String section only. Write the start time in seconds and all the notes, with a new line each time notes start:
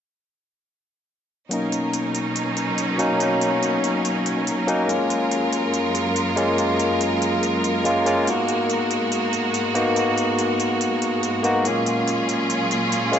1.51 B2 F#3 C#4 D#4 A#4
4.89 F#2 G#3 F4
8.27 G#2 F#4
11.65 A#2 F#3 C#4 F4 G#4